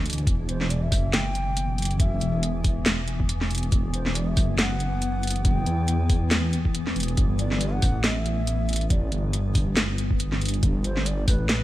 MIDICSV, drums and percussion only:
0, 0, Header, 1, 2, 480
1, 0, Start_track
1, 0, Key_signature, 1, "minor"
1, 0, Tempo, 431655
1, 299, Time_signature, 4, 2, 24, 8
1, 12938, End_track
2, 0, Start_track
2, 0, Title_t, "Drums"
2, 63, Note_on_c, 9, 42, 51
2, 109, Note_off_c, 9, 42, 0
2, 109, Note_on_c, 9, 42, 67
2, 143, Note_off_c, 9, 42, 0
2, 143, Note_on_c, 9, 42, 83
2, 202, Note_off_c, 9, 42, 0
2, 202, Note_on_c, 9, 42, 39
2, 300, Note_on_c, 9, 36, 124
2, 303, Note_off_c, 9, 42, 0
2, 303, Note_on_c, 9, 42, 82
2, 411, Note_off_c, 9, 36, 0
2, 414, Note_off_c, 9, 42, 0
2, 543, Note_on_c, 9, 42, 57
2, 654, Note_off_c, 9, 42, 0
2, 679, Note_on_c, 9, 38, 39
2, 782, Note_on_c, 9, 42, 86
2, 791, Note_off_c, 9, 38, 0
2, 893, Note_off_c, 9, 42, 0
2, 1020, Note_on_c, 9, 36, 107
2, 1022, Note_on_c, 9, 46, 97
2, 1131, Note_off_c, 9, 36, 0
2, 1133, Note_off_c, 9, 46, 0
2, 1262, Note_on_c, 9, 38, 116
2, 1262, Note_on_c, 9, 42, 83
2, 1373, Note_off_c, 9, 38, 0
2, 1373, Note_off_c, 9, 42, 0
2, 1502, Note_on_c, 9, 42, 55
2, 1613, Note_off_c, 9, 42, 0
2, 1743, Note_on_c, 9, 42, 84
2, 1854, Note_off_c, 9, 42, 0
2, 1983, Note_on_c, 9, 42, 54
2, 2029, Note_off_c, 9, 42, 0
2, 2029, Note_on_c, 9, 42, 68
2, 2062, Note_off_c, 9, 42, 0
2, 2062, Note_on_c, 9, 42, 85
2, 2121, Note_off_c, 9, 42, 0
2, 2121, Note_on_c, 9, 42, 38
2, 2220, Note_on_c, 9, 36, 127
2, 2221, Note_off_c, 9, 42, 0
2, 2221, Note_on_c, 9, 42, 82
2, 2331, Note_off_c, 9, 36, 0
2, 2333, Note_off_c, 9, 42, 0
2, 2461, Note_on_c, 9, 42, 57
2, 2572, Note_off_c, 9, 42, 0
2, 2701, Note_on_c, 9, 42, 86
2, 2812, Note_off_c, 9, 42, 0
2, 2939, Note_on_c, 9, 36, 112
2, 2940, Note_on_c, 9, 46, 96
2, 3051, Note_off_c, 9, 36, 0
2, 3052, Note_off_c, 9, 46, 0
2, 3179, Note_on_c, 9, 38, 126
2, 3179, Note_on_c, 9, 42, 83
2, 3291, Note_off_c, 9, 38, 0
2, 3291, Note_off_c, 9, 42, 0
2, 3420, Note_on_c, 9, 42, 56
2, 3531, Note_off_c, 9, 42, 0
2, 3557, Note_on_c, 9, 36, 66
2, 3659, Note_on_c, 9, 42, 86
2, 3668, Note_off_c, 9, 36, 0
2, 3770, Note_off_c, 9, 42, 0
2, 3796, Note_on_c, 9, 38, 39
2, 3899, Note_on_c, 9, 42, 53
2, 3908, Note_off_c, 9, 38, 0
2, 3945, Note_off_c, 9, 42, 0
2, 3945, Note_on_c, 9, 42, 70
2, 3979, Note_off_c, 9, 42, 0
2, 3979, Note_on_c, 9, 42, 85
2, 4036, Note_off_c, 9, 42, 0
2, 4036, Note_on_c, 9, 42, 39
2, 4139, Note_off_c, 9, 42, 0
2, 4139, Note_on_c, 9, 36, 127
2, 4139, Note_on_c, 9, 42, 80
2, 4250, Note_off_c, 9, 36, 0
2, 4250, Note_off_c, 9, 42, 0
2, 4378, Note_on_c, 9, 42, 58
2, 4489, Note_off_c, 9, 42, 0
2, 4516, Note_on_c, 9, 38, 41
2, 4619, Note_on_c, 9, 42, 86
2, 4628, Note_off_c, 9, 38, 0
2, 4730, Note_off_c, 9, 42, 0
2, 4858, Note_on_c, 9, 46, 93
2, 4859, Note_on_c, 9, 36, 111
2, 4969, Note_off_c, 9, 46, 0
2, 4970, Note_off_c, 9, 36, 0
2, 5100, Note_on_c, 9, 38, 126
2, 5100, Note_on_c, 9, 42, 83
2, 5211, Note_off_c, 9, 38, 0
2, 5211, Note_off_c, 9, 42, 0
2, 5339, Note_on_c, 9, 42, 54
2, 5450, Note_off_c, 9, 42, 0
2, 5579, Note_on_c, 9, 42, 85
2, 5691, Note_off_c, 9, 42, 0
2, 5819, Note_on_c, 9, 42, 53
2, 5865, Note_off_c, 9, 42, 0
2, 5865, Note_on_c, 9, 42, 67
2, 5900, Note_off_c, 9, 42, 0
2, 5900, Note_on_c, 9, 42, 83
2, 5957, Note_off_c, 9, 42, 0
2, 5957, Note_on_c, 9, 42, 39
2, 6059, Note_off_c, 9, 42, 0
2, 6059, Note_on_c, 9, 36, 124
2, 6059, Note_on_c, 9, 42, 78
2, 6170, Note_off_c, 9, 36, 0
2, 6170, Note_off_c, 9, 42, 0
2, 6299, Note_on_c, 9, 42, 54
2, 6410, Note_off_c, 9, 42, 0
2, 6538, Note_on_c, 9, 42, 82
2, 6649, Note_off_c, 9, 42, 0
2, 6778, Note_on_c, 9, 46, 89
2, 6779, Note_on_c, 9, 36, 110
2, 6889, Note_off_c, 9, 46, 0
2, 6890, Note_off_c, 9, 36, 0
2, 7019, Note_on_c, 9, 38, 124
2, 7019, Note_on_c, 9, 42, 78
2, 7130, Note_off_c, 9, 38, 0
2, 7130, Note_off_c, 9, 42, 0
2, 7261, Note_on_c, 9, 42, 53
2, 7372, Note_off_c, 9, 42, 0
2, 7397, Note_on_c, 9, 36, 67
2, 7501, Note_on_c, 9, 42, 81
2, 7508, Note_off_c, 9, 36, 0
2, 7612, Note_off_c, 9, 42, 0
2, 7638, Note_on_c, 9, 38, 39
2, 7740, Note_on_c, 9, 42, 50
2, 7749, Note_off_c, 9, 38, 0
2, 7786, Note_off_c, 9, 42, 0
2, 7786, Note_on_c, 9, 42, 66
2, 7818, Note_off_c, 9, 42, 0
2, 7818, Note_on_c, 9, 42, 83
2, 7877, Note_off_c, 9, 42, 0
2, 7877, Note_on_c, 9, 42, 38
2, 7978, Note_off_c, 9, 42, 0
2, 7978, Note_on_c, 9, 42, 76
2, 7979, Note_on_c, 9, 36, 121
2, 8089, Note_off_c, 9, 42, 0
2, 8091, Note_off_c, 9, 36, 0
2, 8219, Note_on_c, 9, 42, 52
2, 8330, Note_off_c, 9, 42, 0
2, 8357, Note_on_c, 9, 38, 38
2, 8459, Note_on_c, 9, 42, 78
2, 8468, Note_off_c, 9, 38, 0
2, 8570, Note_off_c, 9, 42, 0
2, 8699, Note_on_c, 9, 46, 92
2, 8700, Note_on_c, 9, 36, 106
2, 8810, Note_off_c, 9, 46, 0
2, 8811, Note_off_c, 9, 36, 0
2, 8939, Note_on_c, 9, 38, 121
2, 8939, Note_on_c, 9, 42, 75
2, 9051, Note_off_c, 9, 38, 0
2, 9051, Note_off_c, 9, 42, 0
2, 9181, Note_on_c, 9, 42, 50
2, 9292, Note_off_c, 9, 42, 0
2, 9421, Note_on_c, 9, 42, 79
2, 9532, Note_off_c, 9, 42, 0
2, 9661, Note_on_c, 9, 42, 48
2, 9707, Note_off_c, 9, 42, 0
2, 9707, Note_on_c, 9, 42, 64
2, 9741, Note_off_c, 9, 42, 0
2, 9741, Note_on_c, 9, 42, 81
2, 9799, Note_off_c, 9, 42, 0
2, 9799, Note_on_c, 9, 42, 36
2, 9900, Note_on_c, 9, 36, 117
2, 9901, Note_off_c, 9, 42, 0
2, 9901, Note_on_c, 9, 42, 75
2, 10011, Note_off_c, 9, 36, 0
2, 10012, Note_off_c, 9, 42, 0
2, 10141, Note_on_c, 9, 42, 54
2, 10253, Note_off_c, 9, 42, 0
2, 10380, Note_on_c, 9, 42, 76
2, 10491, Note_off_c, 9, 42, 0
2, 10620, Note_on_c, 9, 36, 102
2, 10621, Note_on_c, 9, 46, 94
2, 10731, Note_off_c, 9, 36, 0
2, 10732, Note_off_c, 9, 46, 0
2, 10860, Note_on_c, 9, 38, 115
2, 10860, Note_on_c, 9, 42, 74
2, 10972, Note_off_c, 9, 38, 0
2, 10972, Note_off_c, 9, 42, 0
2, 11100, Note_on_c, 9, 42, 52
2, 11212, Note_off_c, 9, 42, 0
2, 11237, Note_on_c, 9, 36, 62
2, 11340, Note_on_c, 9, 42, 78
2, 11348, Note_off_c, 9, 36, 0
2, 11452, Note_off_c, 9, 42, 0
2, 11479, Note_on_c, 9, 38, 36
2, 11581, Note_on_c, 9, 42, 48
2, 11590, Note_off_c, 9, 38, 0
2, 11626, Note_off_c, 9, 42, 0
2, 11626, Note_on_c, 9, 42, 63
2, 11659, Note_off_c, 9, 42, 0
2, 11659, Note_on_c, 9, 42, 77
2, 11717, Note_off_c, 9, 42, 0
2, 11717, Note_on_c, 9, 42, 35
2, 11819, Note_off_c, 9, 42, 0
2, 11819, Note_on_c, 9, 42, 81
2, 11820, Note_on_c, 9, 36, 116
2, 11930, Note_off_c, 9, 42, 0
2, 11931, Note_off_c, 9, 36, 0
2, 12059, Note_on_c, 9, 42, 54
2, 12170, Note_off_c, 9, 42, 0
2, 12197, Note_on_c, 9, 38, 36
2, 12300, Note_on_c, 9, 42, 81
2, 12308, Note_off_c, 9, 38, 0
2, 12411, Note_off_c, 9, 42, 0
2, 12540, Note_on_c, 9, 36, 100
2, 12541, Note_on_c, 9, 46, 96
2, 12651, Note_off_c, 9, 36, 0
2, 12652, Note_off_c, 9, 46, 0
2, 12780, Note_on_c, 9, 38, 116
2, 12780, Note_on_c, 9, 42, 78
2, 12891, Note_off_c, 9, 38, 0
2, 12891, Note_off_c, 9, 42, 0
2, 12938, End_track
0, 0, End_of_file